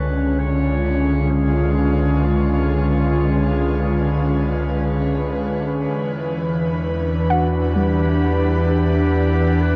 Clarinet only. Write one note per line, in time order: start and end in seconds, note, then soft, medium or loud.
0.00 0.41 B4 medium
0.40 1.32 C#5 medium
1.31 2.25 G#4 medium
2.23 5.00 F4 medium
7.30 7.73 F#4 medium
7.75 8.64 G4 medium
8.69 9.63 G4 medium
9.61 9.76 B4 medium